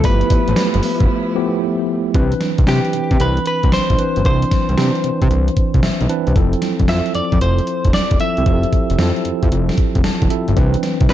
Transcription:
0.04 analog synth bass G1, tine electric piano F3 A3 B3 E4 G4, string section F3 A3 B3 E4, clean electric guitar B4, kick, closed hi-hat, tambourine, cowbell
0.21 closed hi-hat
0.30 kick, closed hi-hat, tambourine, cowbell
0.48 analog synth bass A1, closed hi-hat
0.56 snare, closed hi-hat, tambourine, cowbell
0.74 analog synth bass G1, closed hi-hat
0.83 open hi-hat
1.00 analog synth bass G1, kick, closed hi-hat
1.35 tine electric piano F3 A3 B3 E4 G4
2.14 analog synth bass C2, tine electric piano E3 C4 D4 B4, kick, closed hi-hat
2.32 closed hi-hat
2.41 snare, closed hi-hat
2.58 analog synth bass C2, kick, closed hi-hat
2.66 analog synth bass C3, tine electric piano E3 C4 D4 B4, clean electric guitar G4, snare, closed hi-hat
2.85 closed hi-hat
2.93 analog synth bass C3, closed hi-hat
3.11 analog synth bass C3, kick, closed hi-hat
3.20 analog synth bass C2, clean electric guitar B4, closed hi-hat
3.37 closed hi-hat
3.46 clean electric guitar B4, closed hi-hat
3.63 analog synth bass C2, kick, closed hi-hat
3.72 analog synth bass B1, clean electric guitar C5, snare, closed hi-hat
3.90 analog synth bass B1, kick, closed hi-hat
3.98 tine electric piano E3 C4 D4 B4, closed hi-hat
4.16 analog synth bass G1, closed hi-hat
4.24 analog synth bass C2, tine electric piano E3 C4 D4 C5, clean electric guitar C5, kick, closed hi-hat
4.42 closed hi-hat
4.51 kick, snare, closed hi-hat
4.69 analog synth bass C2, closed hi-hat
4.77 analog synth bass C3, tine electric piano E3 C4 D4 C5, snare, closed hi-hat
4.95 closed hi-hat
5.04 analog synth bass C3, closed hi-hat
5.22 analog synth bass C3, kick, closed hi-hat
5.31 analog synth bass C2, closed hi-hat
5.48 closed hi-hat
5.57 kick, closed hi-hat
5.74 analog synth bass C2, kick, closed hi-hat
5.83 analog synth bass B1, tine electric piano E5, snare, closed hi-hat
6.01 analog synth bass B1, closed hi-hat
6.09 tine electric piano E3 C4 D4 B4 A5, closed hi-hat
6.27 analog synth bass C2, closed hi-hat
6.35 analog synth bass F1, tine electric piano F3 C4 E4 A4, kick, closed hi-hat
6.53 closed hi-hat
6.62 snare, closed hi-hat
6.79 analog synth bass F1, kick, closed hi-hat
6.88 analog synth bass F2, tine electric piano F3 C4 E4 A4, clean electric guitar E5, snare, closed hi-hat
7.06 closed hi-hat
7.15 analog synth bass F2, clean electric guitar D5, closed hi-hat
7.32 analog synth bass F2, kick, closed hi-hat
7.41 analog synth bass F1, clean electric guitar C5, closed hi-hat
7.58 closed hi-hat
7.67 closed hi-hat
7.85 analog synth bass F1, kick, closed hi-hat
7.93 analog synth bass E1, clean electric guitar D5, snare, closed hi-hat
8.11 analog synth bass E1, kick, closed hi-hat
8.19 tine electric piano F3 C4 E4 A4, clean electric guitar E5, closed hi-hat
8.37 analog synth bass C2, closed hi-hat
8.46 analog synth bass F1, tine electric piano F3 C4 E4 G4, kick, closed hi-hat
8.53 tine electric piano A4
8.63 closed hi-hat
8.73 kick, closed hi-hat
8.90 analog synth bass F1, closed hi-hat
8.98 analog synth bass F2, tine electric piano F3 C4 E4 A4, snare, closed hi-hat
9.16 closed hi-hat
9.25 analog synth bass F2, closed hi-hat
9.43 analog synth bass F2, kick, closed hi-hat
9.52 analog synth bass F1, closed hi-hat
9.69 snare, closed hi-hat
9.78 kick, closed hi-hat
9.95 analog synth bass F1, kick, closed hi-hat
10.04 analog synth bass E1, tine electric piano A5, snare, closed hi-hat
10.22 analog synth bass E1, kick, closed hi-hat
10.30 tine electric piano F3 C4 E4 A4 E5, closed hi-hat
10.48 analog synth bass G1, closed hi-hat
10.56 analog synth bass C2, tine electric piano E3 C4 D4 B4, kick, closed hi-hat, cowbell
10.74 closed hi-hat
10.83 snare, closed hi-hat
11.00 analog synth bass C2, kick, closed hi-hat
11.09 analog synth bass C3, tine electric piano E3 C4 D4 B4, clean electric guitar B4, snare, closed hi-hat, cowbell

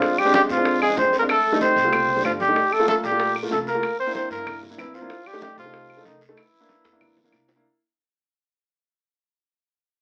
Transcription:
Already playing: trombone F3, grand piano G#3 C4 D4, trumpet F4
0.02 high bongo, high conga, long guiro
0.18 trombone G3, trumpet G4, high conga, claves
0.25 grand piano G#3 C4 D4
0.34 trombone G3, trumpet G4, high bongo, high conga, short guiro
0.49 upright bass F2, trombone F3, trumpet F4, high bongo, high conga, short guiro
0.57 grand piano G#3 C4 D4
0.65 high bongo, high conga, long guiro
0.81 trombone G#3, trumpet G#4, high bongo, high conga, claves
0.89 grand piano G#3 C4 D4
0.97 upright bass F2, trombone C4, trumpet C5, high bongo, low bongo, high conga, short guiro
1.13 high bongo, high conga, short guiro
1.19 grand piano G#3 C4 D4, trombone A#3, trumpet A#4
1.29 trombone A3, trumpet A4, high bongo, high conga, long guiro, claves
1.45 high conga
1.52 grand piano G3 A3 D#4
1.61 trombone C4, trumpet C5, high bongo, high conga, short guiro
1.76 upright bass C2, high bongo, short guiro
1.84 grand piano G3 A3 F4
1.93 high bongo, high conga, low conga, long guiro, claves
2.09 high bongo, high conga, low conga
2.16 grand piano G3 A3 D4
2.24 upright bass G1, trombone F3, trumpet F4, high bongo, low bongo, high conga, short guiro, claves
2.40 trombone G3, trumpet G4, high bongo, high conga, short guiro
2.48 grand piano G3 A3 D#4
2.56 high bongo, high conga, long guiro
2.72 trombone A3, trumpet A4, high conga, claves
2.80 grand piano A3 A#3 F4
2.88 trombone A3, trumpet A4, high bongo, high conga, short guiro
3.03 upright bass A#1, trombone G3, trumpet G4, high bongo, short guiro
3.11 grand piano A3 A#3 F4
3.20 high bongo, high conga, long guiro
3.36 high bongo, high conga, claves
3.43 grand piano A3 A#3 F4
3.51 upright bass C2, trombone A3, trumpet A4, high bongo, low bongo, high conga, short guiro
3.67 trombone A#3, trumpet A#4, high bongo, high conga, short guiro
3.75 grand piano A3 A#3 F4
3.83 high bongo, high conga, long guiro, claves
3.99 trombone C4, trumpet C5, high conga
4.06 grand piano A#3 D4 E4
4.15 trombone C4, trumpet C5, high bongo, high conga, short guiro
4.30 upright bass G2, trombone A#3, trumpet A#4, high bongo, high conga, short guiro
4.38 grand piano A#3 D4 E4
4.47 high bongo, high conga, low conga, long guiro, claves
4.63 high bongo, high conga, low conga
4.70 grand piano A#3 D4 E4
4.78 upright bass F2, trombone E3, trumpet E4, high bongo, low bongo, high conga, short guiro, claves
4.94 trombone F3, trumpet F4, high bongo, short guiro
5.02 grand piano A#3 D4 E4
5.10 high bongo, high conga, long guiro
5.26 trombone G3, trumpet G4, high conga, claves
5.33 grand piano A3 D#4 G4
5.42 trombone G3, trumpet G4, high bongo, high conga, short guiro
5.57 upright bass C2, trombone F3, trumpet F4, high bongo, high conga, short guiro
5.65 grand piano A3 D#4 G4
5.74 high bongo, high conga, long guiro
5.90 high bongo, high conga, claves
5.97 grand piano A3 D#4 A4
6.05 upright bass C2, trombone D#3, trumpet D#4, high bongo, low bongo, high conga, short guiro
6.21 high bongo, high conga, short guiro
6.29 grand piano A3 D#4 A4
6.37 trombone E3, trumpet E4, high bongo, high conga, long guiro, claves
6.53 high conga
6.60 grand piano A#3 D4 E4
6.69 high bongo, high conga, short guiro
6.84 upright bass E2, high bongo, high conga, short guiro
6.92 grand piano A#3 D4 E4
7.01 low bongo, high conga, low conga, long guiro, claves
7.17 low bongo, high conga, low conga
7.24 grand piano A#3 D4 E4
7.32 upright bass C2, low bongo, high conga, short guiro, claves
7.48 low bongo, short guiro
7.56 grand piano A#3 D4 E4

